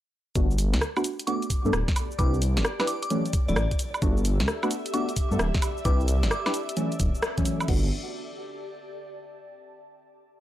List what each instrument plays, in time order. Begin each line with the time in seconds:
0.35 detuned saw bass G1, synth stab A3 B3 D4 F#4, ambient pad G4, kick, closed hi-hat, cabasa
0.51 cabasa
0.56 ambient pad D5, open hi-hat, cabasa
0.74 detuned saw bass D2, snare, closed hi-hat, cabasa
0.81 cross-stick, cabasa
0.96 synth stab A3 B3 D4 F#4, cabasa, high woodblock
1.04 open hi-hat, cabasa
1.19 ambient pad A5, closed hi-hat, cabasa
1.27 synth stab A3 B3 D4 F#4, synth bell D6, closed hi-hat, cabasa
1.42 closed hi-hat, cabasa
1.50 kick, open hi-hat, cabasa
1.65 detuned saw bass G2, synth stab A3 B3 D4 A4, cabasa
1.73 detuned saw bass D1, cross-stick, cabasa
1.88 kick, snare, closed hi-hat, cabasa
1.96 open hi-hat, cabasa, high woodblock
2.11 cabasa
2.19 detuned saw bass C2, synth stab D4 E4 G4 B4, synth bell D6, kick, closed hi-hat, cabasa
2.34 cabasa
2.42 open hi-hat, cabasa
2.57 detuned saw bass G1, snare, closed hi-hat, cabasa
2.65 cross-stick, cabasa
2.80 synth stab D4 E4 G4 B4, snare, cabasa, high woodblock
2.87 synth bell D6, open hi-hat, cabasa
3.02 synth bell D6, closed hi-hat, cabasa
3.10 synth stab E3 F#3 A3 C#4, ambient pad D4, closed hi-hat, cabasa
3.26 closed hi-hat, cabasa
3.33 ambient pad A4, kick, open hi-hat, cabasa
3.48 detuned saw bass D1, synth stab E3 F#3 A3 E4, synth bell D5, cabasa
3.56 detuned saw bass A1, synth bell D5, cross-stick, cabasa
3.71 kick, closed hi-hat, cabasa
3.79 open hi-hat, cabasa
3.94 cabasa, high woodblock
4.02 detuned saw bass G1, synth stab A3 B3 D4 F#4, ambient pad G4, string machine E5, kick, closed hi-hat, cabasa
4.17 cabasa
4.25 open hi-hat, cabasa
4.38 detuned saw bass D2, ambient pad D5, snare, closed hi-hat, cabasa
4.48 cross-stick, cabasa
4.63 synth stab A3 B3 D4 F#4, cabasa, high woodblock
4.71 open hi-hat, cabasa
4.86 ambient pad A5, closed hi-hat, cabasa
4.94 synth stab A3 B3 D4 F#4, synth bell D6, closed hi-hat, cabasa
5.09 closed hi-hat, cabasa
5.16 kick, open hi-hat, cabasa
5.31 detuned saw bass G2, synth stab A3 B3 D4 A4, cabasa
5.39 detuned saw bass D1, cross-stick, cabasa
5.55 kick, snare, closed hi-hat, cabasa
5.62 open hi-hat, cabasa, high woodblock
5.77 cabasa
5.85 detuned saw bass C2, synth stab D4 E4 G4 B4, synth bell D6, kick, closed hi-hat, cabasa
6.00 cabasa
6.08 open hi-hat, cabasa
6.23 detuned saw bass G1, snare, closed hi-hat, cabasa
6.31 synth bell D6, cross-stick, cabasa
6.46 synth stab D4 E4 G4 B4, synth bell D6, snare, cabasa, high woodblock
6.54 open hi-hat, cabasa
6.69 closed hi-hat, cabasa
6.77 synth stab E3 F#3 A3 C#4, closed hi-hat, cabasa
6.92 closed hi-hat, cabasa
7.00 detuned saw bass D1, kick, open hi-hat, cabasa
7.15 cabasa
7.23 cross-stick, cabasa
7.38 synth stab E3 F#3 A3 C#4, kick, closed hi-hat, cabasa
7.45 open hi-hat, cabasa
7.60 cabasa, high woodblock
7.68 detuned saw bass G1, synth stab A3 B3 D4 F#4, ambient pad G4, kick, crash
7.77 ambient pad D5
7.85 ambient pad A5